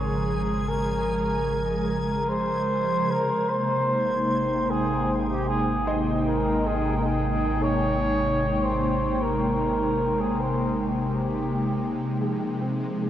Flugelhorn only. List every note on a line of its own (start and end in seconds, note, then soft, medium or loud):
0.00 0.70 G#4 medium
0.69 1.88 A#4 loud
1.88 2.30 A#4 medium
2.28 3.12 C5 loud
3.10 3.50 A#4 medium
3.49 4.72 C5 medium
4.70 5.13 G#4 loud
5.30 5.47 G4 medium
5.49 5.97 G#4 loud
6.26 6.68 A#4 medium
6.67 6.97 G#4 medium
6.98 7.06 A#4 medium
7.04 7.64 G#4 medium
7.62 8.64 C#5 loud
8.63 9.24 C5 medium
9.22 10.22 A#4 medium
10.20 10.41 G#4 medium
10.40 10.73 C5 medium
11.02 12.17 G4 medium